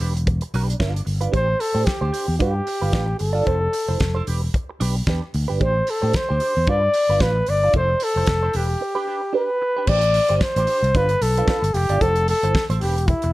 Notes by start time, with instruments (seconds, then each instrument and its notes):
0.00 fingered electric bass E1, clean electric guitar D4 G4 B4, open hi-hat
0.16 muted clean electric guitar stroke, closed hi-hat
0.27 muted clean electric guitar stroke, kick, closed hi-hat
0.41 muted clean electric guitar stroke, closed hi-hat
0.54 fingered electric bass B1, clean electric guitar D4 G4 B4, open hi-hat
0.68 muted clean electric guitar stroke, closed hi-hat
0.80 fingered electric bass G1, clean electric guitar D4 F4 B4, kick, snare
0.94 muted clean electric guitar stroke, closed hi-hat
1.05 fingered electric bass G1, muted clean electric guitar stroke, open hi-hat
1.21 clean electric guitar D4 F4 B4, closed hi-hat
1.32 fingered electric bass A1, clean electric guitar D4 G4 C5, flugelhorn C5, kick, closed hi-hat
1.48 muted clean electric guitar stroke
1.60 flugelhorn A4, muted clean electric guitar stroke, open hi-hat
1.74 fingered electric bass A2, clean electric guitar D4 G4 C5
1.85 flugelhorn G4, kick, snare, closed hi-hat
2.01 fingered electric bass D2, clean electric guitar D4 G4 C5
2.12 clean electric guitar D4 G4 C5, open hi-hat
2.28 fingered electric bass E2
2.38 fingered electric bass G2, clean electric guitar D4 F4 B4, flugelhorn G4, kick, closed hi-hat
2.55 muted clean electric guitar stroke
2.67 muted clean electric guitar stroke, open hi-hat
2.82 fingered electric bass G1, clean electric guitar D4 F4 B4
2.93 fingered electric bass A1, clean electric guitar D4 F4 B4, kick, snare, closed hi-hat
3.08 muted clean electric guitar stroke
3.19 fingered electric bass G1, flugelhorn A4, muted clean electric guitar stroke, open hi-hat
3.33 clean electric guitar D4 F4 D5
3.45 fingered electric bass F1, clean electric guitar E4 A4 C5, kick, closed hi-hat
3.60 muted clean electric guitar stroke
3.73 muted clean electric guitar stroke, open hi-hat
3.88 fingered electric bass F1, clean electric guitar E4 A4 C5
4.00 fingered electric bass F1, kick, snare, closed hi-hat
4.15 clean electric guitar E4 A4 C5
4.27 fingered electric bass E1, clean electric guitar D4 G4 B4, open hi-hat
4.43 muted clean electric guitar stroke
4.54 muted clean electric guitar stroke, kick, closed hi-hat
4.70 muted clean electric guitar stroke
4.80 fingered electric bass B1, clean electric guitar D4 G4 B4, open hi-hat
4.96 muted clean electric guitar stroke
5.07 fingered electric bass E2, clean electric guitar D4 G4 B4, kick, snare, closed hi-hat
5.22 muted clean electric guitar stroke
5.34 fingered electric bass D2, muted clean electric guitar stroke, open hi-hat
5.48 fingered electric bass G1, clean electric guitar D4 G4 B4
5.60 fingered electric bass A1, clean electric guitar D4 G4 C5, flugelhorn C5, kick, closed hi-hat
5.76 muted clean electric guitar stroke
5.87 flugelhorn A4, muted clean electric guitar stroke, open hi-hat
6.02 fingered electric bass A2, clean electric guitar D4 G4 C5
6.13 flugelhorn C5, muted clean electric guitar stroke, kick, snare, closed hi-hat
6.29 fingered electric bass D2, clean electric guitar D4 G4 C5
6.40 clean electric guitar D4 G4 C5, open hi-hat
6.57 fingered electric bass E2
6.67 fingered electric bass G2, clean electric guitar D4 F4 B4, flugelhorn D5, kick, closed hi-hat
6.83 muted clean electric guitar stroke
6.94 muted clean electric guitar stroke, open hi-hat
7.09 fingered electric bass G1, clean electric guitar D4 F4 B4
7.20 fingered electric bass A1, clean electric guitar D4 F4 B4, flugelhorn B4, kick, snare, closed hi-hat
7.37 muted clean electric guitar stroke
7.46 fingered electric bass G1, flugelhorn D5, muted clean electric guitar stroke, open hi-hat
7.64 clean electric guitar D4 F4 D5
7.73 fingered electric bass F1, clean electric guitar E4 A4 C5, flugelhorn C5, kick, closed hi-hat
7.90 muted clean electric guitar stroke
8.00 flugelhorn A4, muted clean electric guitar stroke, open hi-hat
8.16 fingered electric bass F1, clean electric guitar E4 A4 C5
8.26 fingered electric bass F1, muted clean electric guitar stroke, kick, snare, closed hi-hat
8.43 clean electric guitar E4 A4 C5
8.53 fingered electric bass E1, clean electric guitar D4 G4 B4, flugelhorn G4, open hi-hat
8.68 muted clean electric guitar stroke
8.81 muted clean electric guitar stroke
8.95 clean electric guitar D4 G4 B4
9.07 clean electric guitar D4 G4 B4
9.22 muted clean electric guitar stroke
9.33 clean electric guitar D4 G4 B4, flugelhorn B4
9.50 muted clean electric guitar stroke
9.62 muted clean electric guitar stroke
9.77 clean electric guitar D4 G4 B4
9.87 fingered electric bass A1, clean electric guitar D4 G4 C5, flugelhorn D5, kick, crash
10.02 muted clean electric guitar stroke, closed hi-hat
10.14 muted clean electric guitar stroke, open hi-hat
10.28 fingered electric bass G1, clean electric guitar D4 G4 C5, closed hi-hat
10.37 flugelhorn D5, snare
10.41 flugelhorn C5, kick
10.56 fingered electric bass A1, clean electric guitar D4 G4 C5, closed hi-hat
10.67 clean electric guitar D4 G4 C5, open hi-hat
10.83 fingered electric bass C2, closed hi-hat
10.95 fingered electric bass G1, clean electric guitar D4 F4 B4, flugelhorn B4, kick, closed hi-hat
11.09 muted clean electric guitar stroke, closed hi-hat
11.21 fingered electric bass B1, flugelhorn A4, muted clean electric guitar stroke, open hi-hat
11.37 clean electric guitar D4 F4 B4, closed hi-hat
11.48 clean electric guitar D4 F4 B4, kick, snare
11.62 fingered electric bass G1, muted clean electric guitar stroke, closed hi-hat
11.74 fingered electric bass F1, flugelhorn G4, muted clean electric guitar stroke, open hi-hat
11.89 fingered electric bass G1, clean electric guitar D4 F4 D5, closed hi-hat
12.01 fingered electric bass F1, clean electric guitar E4 A4 C5, flugelhorn A4, kick, closed hi-hat
12.16 muted clean electric guitar stroke, closed hi-hat
12.28 flugelhorn A4, muted clean electric guitar stroke, open hi-hat
12.43 fingered electric bass G1, clean electric guitar E4 A4 C5, closed hi-hat
12.55 kick, snare
12.70 fingered electric bass A1, clean electric guitar E4 A4 C5, closed hi-hat
12.81 fingered electric bass E1, clean electric guitar D4 G4 B4, flugelhorn G4, open hi-hat
12.98 closed hi-hat
13.07 flugelhorn E4, muted clean electric guitar stroke, kick, closed hi-hat
13.22 fingered electric bass E1, muted clean electric guitar stroke, closed hi-hat